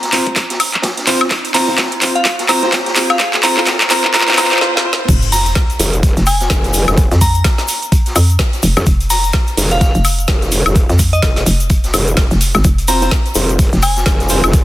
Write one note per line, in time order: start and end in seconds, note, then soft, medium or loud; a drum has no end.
0.00 0.32 A#5 medium
0.00 snare medium
0.00 closed hi-hat medium
0.00 riser medium
0.12 0.31 C4 medium
0.12 0.31 F4 medium
0.12 0.31 C5 medium
0.12 clap medium
0.12 closed hi-hat medium
0.12 open hi-hat loud
0.27 kick medium
0.27 closed hi-hat soft
0.36 kick loud
0.36 clap medium
0.36 closed hi-hat medium
0.50 snare soft
0.50 closed hi-hat medium
0.60 closed hi-hat medium
0.60 open hi-hat loud
0.60 high woodblock medium
0.74 clap medium
0.74 closed hi-hat soft
0.82 kick loud
0.82 snare loud
0.82 closed hi-hat medium
0.97 snare soft
0.97 closed hi-hat medium
1.07 1.20 C4 loud
1.07 1.20 F4 medium
1.07 1.20 C5 loud
1.07 clap medium
1.07 closed hi-hat medium
1.07 open hi-hat loud
1.21 snare soft
1.21 high woodblock medium
1.31 kick loud
1.31 clap medium
1.31 closed hi-hat medium
1.45 closed hi-hat soft
1.54 1.66 C4 medium
1.54 1.66 F4 medium
1.54 1.66 C5 medium
1.54 1.72 A#5 medium
1.54 snare soft
1.54 clap medium
1.54 open hi-hat loud
1.54 open hi-hat medium
1.68 1.77 C4 medium
1.68 1.77 F4 medium
1.68 1.77 C5 medium
1.78 kick loud
1.78 snare loud
1.78 clap medium
1.78 closed hi-hat medium
1.92 closed hi-hat soft
2.02 2.20 C4 medium
2.02 2.20 F4 medium
2.02 2.20 C5 medium
2.02 clap medium
2.02 closed hi-hat medium
2.02 open hi-hat loud
2.15 2.22 F5 medium
2.15 closed hi-hat soft
2.25 kick loud
2.25 clap medium
2.25 closed hi-hat loud
2.25 closed hi-hat medium
2.39 snare soft
2.39 closed hi-hat medium
2.49 2.61 C4 medium
2.49 2.61 F4 medium
2.49 2.61 C5 loud
2.49 2.66 A#5 medium
2.49 clap medium
2.49 closed hi-hat medium
2.49 open hi-hat loud
2.49 high woodblock medium
2.63 2.71 C4 medium
2.63 2.72 F4 medium
2.63 2.71 C5 loud
2.63 snare medium
2.63 closed hi-hat soft
2.72 kick loud
2.72 snare loud
2.72 clap medium
2.72 closed hi-hat medium
2.86 snare medium
2.86 closed hi-hat medium
2.96 3.14 C4 medium
2.96 3.14 F4 medium
2.96 3.14 C5 medium
2.96 clap medium
2.96 closed hi-hat medium
2.96 open hi-hat medium
3.10 3.16 F5 medium
3.10 snare soft
3.10 closed hi-hat soft
3.10 high woodblock medium
3.19 kick loud
3.19 clap medium
3.19 closed hi-hat medium
3.33 snare medium
3.33 clap medium
3.33 closed hi-hat medium
3.43 3.55 C4 medium
3.43 3.55 F4 medium
3.43 3.55 C5 loud
3.43 3.61 A#5 medium
3.43 clap medium
3.43 closed hi-hat medium
3.43 open hi-hat loud
3.57 3.65 C4 medium
3.57 3.65 F4 medium
3.57 3.65 C5 loud
3.57 clap medium
3.66 kick loud
3.66 snare loud
3.66 clap loud
3.66 closed hi-hat medium
3.81 snare medium
3.81 clap medium
3.81 closed hi-hat medium
3.90 4.02 C4 loud
3.90 4.02 F4 medium
3.90 4.02 C5 loud
3.90 4.08 A#5 loud
3.90 clap loud
3.90 closed hi-hat medium
3.90 open hi-hat loud
4.04 4.13 C4 medium
4.04 4.13 F4 medium
4.04 4.13 C5 loud
4.04 kick medium
4.04 clap medium
4.14 4.26 C4 medium
4.14 4.26 F4 medium
4.14 4.26 C5 loud
4.14 4.31 A#5 medium
4.14 kick loud
4.14 clap loud
4.14 closed hi-hat medium
4.14 swell medium
4.21 clap loud
4.28 4.36 C4 medium
4.28 4.36 F4 medium
4.28 4.36 C5 loud
4.28 snare soft
4.28 clap medium
4.28 closed hi-hat medium
4.33 clap medium
4.38 4.50 C4 loud
4.38 4.50 F4 medium
4.38 4.50 C5 loud
4.38 4.55 A#5 loud
4.38 snare loud
4.38 clap loud
4.38 closed hi-hat medium
4.38 open hi-hat loud
4.38 high woodblock medium
4.45 clap medium
4.52 4.60 C4 loud
4.52 4.60 F4 medium
4.52 4.60 C5 loud
4.52 clap medium
4.52 closed hi-hat soft
4.56 clap medium
4.61 4.73 C4 medium
4.61 4.73 F4 medium
4.61 4.73 C5 loud
4.61 snare medium
4.75 4.83 C4 loud
4.75 4.83 F4 medium
4.75 4.83 C5 loud
4.75 snare medium
4.85 4.97 C4 loud
4.85 4.97 F4 medium
4.85 4.97 C5 loud
4.93 snare loud
4.99 5.07 C4 medium
4.99 5.07 F4 medium
4.99 5.07 C5 loud
5.08 5.54 F1 loud
5.08 kick loud
5.08 closed hi-hat medium
5.08 crash loud
5.08 sub drop medium
5.08 cabasa medium
5.22 closed hi-hat soft
5.22 closed hi-hat medium
5.22 cabasa soft
5.32 5.50 A#5 medium
5.32 snare soft
5.32 open hi-hat loud
5.32 open hi-hat medium
5.32 cabasa medium
5.46 closed hi-hat soft
5.46 cabasa soft
5.55 kick loud
5.55 snare loud
5.55 closed hi-hat medium
5.55 cabasa medium
5.70 closed hi-hat medium
5.70 cabasa soft
5.79 6.15 F1 medium
5.79 closed hi-hat medium
5.79 open hi-hat loud
5.79 cabasa loud
5.93 closed hi-hat soft
5.93 cabasa soft
6.03 kick loud
6.03 closed hi-hat medium
6.03 closed hi-hat loud
6.03 cabasa medium
6.17 6.49 F1 medium
6.17 snare soft
6.17 closed hi-hat medium
6.17 cabasa soft
6.26 6.94 G#5 loud
6.26 closed hi-hat medium
6.26 open hi-hat loud
6.26 cabasa loud
6.26 high woodblock medium
6.41 snare medium
6.41 closed hi-hat soft
6.41 cabasa soft
6.50 6.86 F1 medium
6.50 kick loud
6.50 snare loud
6.50 closed hi-hat medium
6.50 cabasa medium
6.64 snare medium
6.64 closed hi-hat medium
6.64 cabasa soft
6.73 closed hi-hat medium
6.73 open hi-hat loud
6.73 cabasa loud
6.87 7.09 F1 loud
6.87 snare soft
6.87 closed hi-hat soft
6.87 cabasa soft
6.87 high woodblock medium
6.97 kick loud
6.97 closed hi-hat medium
6.97 cabasa medium
7.11 7.43 F2 loud
7.11 snare medium
7.11 closed hi-hat medium
7.11 cabasa soft
7.21 7.88 A#5 medium
7.21 kick medium
7.21 closed hi-hat medium
7.21 open hi-hat loud
7.21 cabasa loud
7.34 closed hi-hat soft
7.34 cabasa soft
7.44 kick loud
7.44 snare loud
7.44 closed hi-hat medium
7.44 cabasa medium
7.58 snare soft
7.58 closed hi-hat medium
7.58 cabasa soft
7.68 closed hi-hat medium
7.68 open hi-hat loud
7.68 cabasa medium
7.82 closed hi-hat soft
7.82 cabasa soft
7.92 kick loud
7.92 closed hi-hat loud
7.92 closed hi-hat medium
7.92 cabasa medium
8.06 snare soft
8.06 closed hi-hat medium
8.06 cabasa soft
8.15 8.38 F2 medium
8.15 closed hi-hat medium
8.15 open hi-hat loud
8.15 cabasa loud
8.15 high woodblock medium
8.30 closed hi-hat soft
8.30 cabasa soft
8.39 kick loud
8.39 snare loud
8.39 closed hi-hat medium
8.39 cabasa medium
8.53 snare soft
8.53 closed hi-hat medium
8.53 cabasa soft
8.63 8.75 F1 loud
8.63 closed hi-hat medium
8.63 open hi-hat loud
8.63 cabasa loud
8.76 8.85 F2 loud
8.76 snare soft
8.76 closed hi-hat soft
8.76 cabasa soft
8.76 high woodblock medium
8.86 9.32 F1 medium
8.86 kick loud
8.86 closed hi-hat medium
8.86 cabasa medium
9.00 closed hi-hat soft
9.00 closed hi-hat medium
9.00 cabasa soft
9.10 9.27 A#5 medium
9.10 snare soft
9.10 open hi-hat medium
9.10 open hi-hat loud
9.10 cabasa loud
9.24 closed hi-hat soft
9.24 cabasa soft
9.33 kick loud
9.33 snare loud
9.33 closed hi-hat medium
9.33 cabasa medium
9.47 closed hi-hat medium
9.47 cabasa soft
9.57 9.93 F1 medium
9.57 snare soft
9.57 open hi-hat loud
9.57 open hi-hat medium
9.57 cabasa loud
9.71 9.78 F5 medium
9.71 closed hi-hat soft
9.71 cabasa soft
9.81 9.90 F5 medium
9.81 kick loud
9.81 snare loud
9.81 closed hi-hat medium
9.81 cabasa medium
9.95 10.27 F1 medium
9.95 closed hi-hat medium
9.95 cabasa soft
10.05 closed hi-hat medium
10.05 open hi-hat loud
10.05 cabasa medium
10.05 high woodblock medium
10.19 closed hi-hat soft
10.19 cabasa soft
10.28 10.64 F1 medium
10.28 kick loud
10.28 snare loud
10.28 closed hi-hat loud
10.28 closed hi-hat medium
10.28 cabasa medium
10.42 snare medium
10.42 closed hi-hat medium
10.42 cabasa soft
10.51 closed hi-hat medium
10.51 open hi-hat loud
10.51 cabasa loud
10.65 10.87 F1 loud
10.65 snare soft
10.65 closed hi-hat soft
10.65 cabasa soft
10.65 high woodblock medium
10.75 kick loud
10.75 closed hi-hat medium
10.75 cabasa medium
10.89 11.21 F2 loud
10.89 snare soft
10.89 closed hi-hat soft
10.89 cabasa soft
10.99 kick medium
10.99 closed hi-hat medium
10.99 open hi-hat loud
10.99 cabasa medium
11.13 11.19 D#5 medium
11.13 closed hi-hat soft
11.13 cabasa soft
11.22 11.45 F1 loud
11.22 kick loud
11.22 snare loud
11.22 closed hi-hat medium
11.22 cabasa medium
11.36 snare soft
11.36 closed hi-hat medium
11.36 cabasa soft
11.46 11.92 F1 loud
11.46 closed hi-hat medium
11.46 open hi-hat loud
11.46 cabasa medium
11.60 closed hi-hat soft
11.60 cabasa soft
11.69 kick loud
11.69 closed hi-hat loud
11.69 closed hi-hat medium
11.69 cabasa medium
11.84 snare soft
11.84 closed hi-hat soft
11.84 cabasa soft
11.93 12.16 F1 loud
11.93 closed hi-hat medium
11.93 open hi-hat loud
11.93 cabasa medium
11.93 high woodblock medium
12.08 closed hi-hat soft
12.08 cabasa soft
12.17 12.29 F1 medium
12.17 kick loud
12.17 snare loud
12.17 closed hi-hat medium
12.17 cabasa medium
12.31 12.53 F1 loud
12.31 snare soft
12.31 closed hi-hat soft
12.31 cabasa soft
12.41 closed hi-hat medium
12.41 open hi-hat loud
12.41 cabasa medium
12.54 12.63 G#1 loud
12.54 snare soft
12.54 cabasa soft
12.54 high woodblock medium
12.64 13.10 F1 loud
12.64 kick loud
12.64 closed hi-hat medium
12.64 cabasa medium
12.78 closed hi-hat medium
12.78 cabasa soft
12.87 13.00 C4 loud
12.87 13.00 F4 medium
12.87 13.00 C5 loud
12.87 13.05 A#5 medium
12.87 snare soft
12.87 open hi-hat medium
12.87 open hi-hat loud
12.87 cabasa loud
13.02 13.11 C4 medium
13.02 13.11 F4 medium
13.02 13.11 C5 loud
13.02 closed hi-hat soft
13.02 cabasa soft
13.11 kick loud
13.11 snare loud
13.11 closed hi-hat medium
13.11 cabasa medium
13.26 closed hi-hat medium
13.26 cabasa soft
13.35 13.71 F1 medium
13.35 13.54 C4 medium
13.35 13.54 F4 medium
13.35 13.54 C5 medium
13.35 closed hi-hat medium
13.35 open hi-hat loud
13.35 cabasa loud
13.49 closed hi-hat soft
13.49 cabasa soft
13.59 kick loud
13.59 closed hi-hat medium
13.59 cabasa medium
13.72 14.05 F1 loud
13.72 snare soft
13.72 closed hi-hat medium
13.72 cabasa soft
13.82 14.50 G#5 loud
13.82 closed hi-hat medium
13.82 open hi-hat loud
13.82 cabasa medium
13.82 high woodblock medium
13.97 snare medium
13.97 closed hi-hat soft
13.97 cabasa soft
14.06 14.42 F1 medium
14.06 kick loud
14.06 snare loud
14.06 closed hi-hat medium
14.06 cabasa medium
14.20 snare medium
14.20 closed hi-hat medium
14.20 cabasa soft
14.29 14.42 C4 loud
14.29 14.42 F4 medium
14.29 14.42 C5 loud
14.29 closed hi-hat medium
14.29 open hi-hat medium
14.29 cabasa medium
14.43 14.64 F1 medium
14.43 snare soft
14.43 closed hi-hat soft
14.43 cabasa soft
14.43 high woodblock medium
14.53 kick loud
14.53 closed hi-hat medium
14.53 cabasa medium